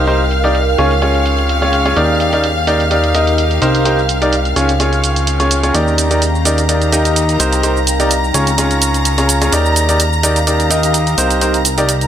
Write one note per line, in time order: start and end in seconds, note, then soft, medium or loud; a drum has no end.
0.00 0.76 C2 medium
0.00 0.22 D#4 medium
0.00 0.23 A#4 medium
0.00 0.23 F5 medium
0.00 5.75 F5 medium
0.00 5.75 F6 medium
0.07 0.20 D#4 medium
0.07 0.20 G4 medium
0.07 0.20 A#4 medium
0.07 0.20 C5 medium
0.07 2.63 G5 medium
0.07 closed hi-hat medium
0.07 shaker soft
0.31 closed hi-hat medium
0.31 shaker medium
0.44 0.55 D#4 medium
0.44 0.55 G4 medium
0.44 0.55 A#4 medium
0.44 0.55 D5 medium
0.44 closed hi-hat soft
0.44 shaker soft
0.55 closed hi-hat medium
0.55 shaker soft
0.68 shaker soft
0.78 1.94 C#2 medium
0.78 1.97 C#4 medium
0.78 0.91 C#4 medium
0.78 0.91 F4 medium
0.78 0.91 G#4 medium
0.78 0.91 C#5 medium
0.78 closed hi-hat medium
0.78 shaker medium
0.91 closed hi-hat soft
0.91 shaker soft
1.02 1.59 C#4 medium
1.02 1.59 F4 medium
1.02 1.59 G#4 medium
1.02 1.59 C#5 medium
1.02 closed hi-hat medium
1.02 shaker soft
1.15 closed hi-hat soft
1.15 shaker soft
1.26 closed hi-hat medium
1.26 shaker medium
1.30 4.01 F5 medium
1.38 closed hi-hat soft
1.38 shaker soft
1.49 closed hi-hat medium
1.49 shaker soft
1.62 1.83 C#4 medium
1.62 1.83 F4 medium
1.62 1.83 G#4 medium
1.62 1.83 C#5 medium
1.62 closed hi-hat soft
1.62 shaker soft
1.73 closed hi-hat medium
1.73 shaker medium
1.86 1.95 C#4 medium
1.86 1.95 F4 medium
1.86 1.95 G#4 medium
1.86 1.95 C#5 medium
1.86 closed hi-hat soft
1.86 shaker soft
1.97 3.60 D#2 medium
1.97 2.30 D#4 medium
1.97 4.00 D#4 medium
1.97 2.30 G4 medium
1.97 2.30 A#4 medium
1.97 2.30 D5 medium
1.97 closed hi-hat medium
1.97 shaker soft
2.10 shaker soft
2.19 4.00 A#4 medium
2.19 closed hi-hat medium
2.19 shaker medium
2.33 2.44 D#4 medium
2.33 2.44 G4 medium
2.33 2.44 A#4 medium
2.33 2.44 D5 medium
2.33 closed hi-hat soft
2.33 shaker soft
2.44 closed hi-hat medium
2.44 shaker soft
2.57 shaker soft
2.67 2.80 D#4 medium
2.67 2.80 G4 medium
2.67 2.80 A#4 medium
2.67 2.80 D5 medium
2.67 closed hi-hat medium
2.67 shaker medium
2.71 3.98 G5 medium
2.80 closed hi-hat soft
2.80 shaker soft
2.91 3.12 D#4 medium
2.91 3.12 G4 medium
2.91 3.12 A#4 medium
2.91 3.12 D5 medium
2.91 closed hi-hat medium
2.91 shaker soft
3.04 closed hi-hat soft
3.04 shaker soft
3.15 3.59 D#4 medium
3.15 3.59 G4 medium
3.15 3.59 A#4 medium
3.15 3.59 D#5 medium
3.15 closed hi-hat medium
3.15 shaker medium
3.27 closed hi-hat soft
3.27 shaker soft
3.38 closed hi-hat medium
3.38 shaker soft
3.51 closed hi-hat soft
3.51 shaker soft
3.62 4.54 C2 medium
3.62 3.83 D#4 medium
3.62 3.83 G4 medium
3.62 3.83 A#4 medium
3.62 3.83 C5 loud
3.62 closed hi-hat medium
3.62 shaker medium
3.75 closed hi-hat soft
3.75 shaker soft
3.85 3.98 D#4 medium
3.85 3.98 G4 medium
3.85 3.98 A#4 medium
3.85 3.98 C5 medium
3.85 closed hi-hat medium
3.85 shaker soft
3.99 6.41 G5 medium
3.99 shaker soft
4.09 closed hi-hat medium
4.09 shaker medium
4.22 4.33 D#4 medium
4.22 4.33 G4 medium
4.22 4.33 A#4 medium
4.22 4.33 D5 medium
4.22 closed hi-hat soft
4.22 shaker soft
4.33 closed hi-hat medium
4.33 shaker soft
4.45 closed hi-hat soft
4.45 shaker soft
4.56 5.72 C#2 medium
4.56 4.69 C#4 medium
4.56 5.74 C#4 medium
4.56 4.69 F4 medium
4.56 4.69 G#4 medium
4.56 4.69 C#5 medium
4.56 closed hi-hat medium
4.56 shaker medium
4.69 closed hi-hat soft
4.69 shaker soft
4.80 5.37 C#4 medium
4.80 5.37 F4 medium
4.80 5.37 G#4 medium
4.80 5.37 C#5 medium
4.80 closed hi-hat medium
4.80 shaker soft
4.93 closed hi-hat soft
4.93 shaker soft
5.04 closed hi-hat medium
5.04 shaker medium
5.10 7.78 F5 medium
5.16 closed hi-hat soft
5.16 shaker soft
5.27 closed hi-hat medium
5.27 shaker soft
5.40 5.60 C#4 medium
5.40 5.60 F4 medium
5.40 5.61 G#4 medium
5.40 5.60 C#5 medium
5.40 closed hi-hat soft
5.40 shaker soft
5.51 closed hi-hat medium
5.51 shaker medium
5.63 5.73 C#4 medium
5.63 5.73 F4 medium
5.63 5.73 G#4 medium
5.63 5.73 C#5 medium
5.63 closed hi-hat soft
5.63 shaker soft
5.74 7.38 D#2 medium
5.74 7.78 D#4 medium
5.74 6.08 D#4 medium
5.74 6.08 G4 medium
5.74 6.08 A#4 medium
5.74 6.08 D5 medium
5.74 12.07 A#5 medium
5.74 12.07 A#6 medium
5.74 closed hi-hat medium
5.74 shaker soft
5.88 shaker soft
5.98 closed hi-hat medium
5.98 shaker medium
6.10 6.22 D#4 medium
6.10 6.22 G4 medium
6.10 7.78 A#4 medium
6.10 6.22 A#4 medium
6.10 6.22 D5 medium
6.10 closed hi-hat soft
6.10 shaker soft
6.22 closed hi-hat medium
6.22 shaker soft
6.35 shaker soft
6.45 6.58 D#4 medium
6.45 6.58 G4 medium
6.45 6.58 A#4 medium
6.45 6.58 D5 medium
6.45 closed hi-hat medium
6.45 shaker medium
6.50 7.79 G5 medium
6.58 closed hi-hat soft
6.58 shaker soft
6.69 6.90 D#4 medium
6.69 6.90 G4 medium
6.69 6.90 A#4 medium
6.69 6.90 D5 medium
6.69 closed hi-hat medium
6.69 shaker soft
6.82 closed hi-hat soft
6.82 shaker soft
6.92 7.37 D#4 medium
6.92 7.37 G4 medium
6.92 7.37 A#4 medium
6.92 7.37 D#5 loud
6.92 closed hi-hat medium
6.92 shaker medium
7.05 closed hi-hat soft
7.05 shaker soft
7.16 closed hi-hat medium
7.16 shaker soft
7.29 closed hi-hat soft
7.29 shaker soft
7.40 8.32 C2 medium
7.40 7.61 D#4 medium
7.40 7.61 G4 medium
7.40 7.61 A#4 medium
7.40 7.61 C5 medium
7.40 closed hi-hat medium
7.40 shaker medium
7.53 closed hi-hat soft
7.53 shaker soft
7.63 7.76 D#4 medium
7.63 7.76 G4 medium
7.63 7.76 A#4 medium
7.63 7.76 C5 medium
7.63 closed hi-hat medium
7.63 shaker soft
7.77 shaker soft
7.87 closed hi-hat medium
7.87 shaker medium
8.00 8.11 D#4 medium
8.00 8.11 G4 medium
8.00 8.11 A#4 medium
8.00 8.11 D5 medium
8.00 closed hi-hat soft
8.00 shaker soft
8.11 closed hi-hat medium
8.11 shaker soft
8.24 shaker soft
8.34 9.50 C#2 medium
8.34 8.47 C#4 medium
8.34 9.53 C#4 medium
8.34 8.47 F4 medium
8.34 8.47 G#4 medium
8.34 8.47 C#5 medium
8.34 closed hi-hat medium
8.34 shaker medium
8.47 closed hi-hat soft
8.47 shaker soft
8.58 9.15 C#4 medium
8.58 9.15 F4 medium
8.58 9.15 G#4 medium
8.58 9.15 C#5 medium
8.58 closed hi-hat medium
8.58 shaker soft
8.71 closed hi-hat soft
8.71 shaker soft
8.82 closed hi-hat medium
8.82 shaker medium
8.88 11.56 F5 medium
8.94 closed hi-hat soft
8.94 shaker soft
9.05 closed hi-hat medium
9.05 shaker soft
9.18 9.39 C#4 medium
9.18 9.39 F4 medium
9.18 9.39 G#4 medium
9.18 9.39 C#5 medium
9.18 closed hi-hat soft
9.18 shaker soft
9.29 closed hi-hat medium
9.29 shaker medium
9.42 9.51 C#4 medium
9.42 9.51 F4 medium
9.42 9.51 G#4 medium
9.42 9.51 C#5 medium
9.42 closed hi-hat soft
9.42 shaker soft
9.53 11.16 D#2 medium
9.53 9.86 D#4 medium
9.53 11.56 D#4 medium
9.53 9.86 G4 medium
9.53 9.86 A#4 medium
9.53 9.86 D5 medium
9.53 closed hi-hat medium
9.53 shaker soft
9.66 11.56 A#4 medium
9.66 shaker soft
9.76 11.56 G5 medium
9.76 closed hi-hat medium
9.76 shaker medium
9.89 10.00 D#4 medium
9.89 10.00 G4 medium
9.89 10.00 A#4 medium
9.89 10.00 D5 medium
9.89 closed hi-hat soft
9.89 shaker soft
10.00 closed hi-hat medium
10.00 shaker soft
10.13 shaker soft
10.23 10.36 D#4 medium
10.23 10.36 G4 medium
10.23 10.36 A#4 medium
10.23 10.36 D5 medium
10.23 closed hi-hat medium
10.23 shaker medium
10.36 closed hi-hat soft
10.36 shaker soft
10.47 10.68 D#4 medium
10.47 10.68 G4 medium
10.47 10.68 A#4 medium
10.47 10.68 D5 medium
10.47 closed hi-hat medium
10.47 shaker soft
10.60 closed hi-hat soft
10.60 shaker soft
10.71 11.15 D#4 medium
10.71 11.15 G4 medium
10.71 11.15 A#4 medium
10.71 11.15 D#5 medium
10.71 closed hi-hat medium
10.71 shaker medium
10.83 closed hi-hat soft
10.83 shaker soft
10.94 closed hi-hat medium
10.94 shaker soft
11.07 closed hi-hat soft
11.07 shaker soft
11.18 12.07 C2 medium
11.18 11.39 D#4 medium
11.18 11.39 G4 medium
11.18 11.39 A#4 medium
11.18 11.39 C5 loud
11.18 closed hi-hat medium
11.18 shaker medium
11.31 closed hi-hat medium
11.31 shaker soft
11.41 11.54 D#4 medium
11.41 11.54 G4 medium
11.41 11.54 A#4 medium
11.41 11.54 C5 medium
11.41 closed hi-hat medium
11.41 shaker soft
11.54 closed hi-hat soft
11.54 shaker soft
11.61 12.07 C5 medium
11.65 closed hi-hat medium
11.65 shaker medium
11.78 11.89 D#4 medium
11.78 11.89 G4 medium
11.78 11.89 A#4 medium
11.78 11.89 D5 loud
11.78 closed hi-hat medium
11.78 shaker soft
11.89 closed hi-hat medium
11.89 shaker soft
12.01 closed hi-hat soft
12.01 shaker soft